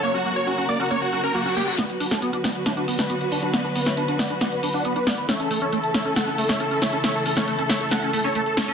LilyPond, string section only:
\new Staff \with { instrumentName = "String section" } { \time 4/4 \key b \minor \tempo 4 = 137 <cis fis ais fis' ais'>1 | <d fis b fis' b'>1~ | <d fis b fis' b'>1 | <cis e a e' a'>1~ |
<cis e a e' a'>1 | }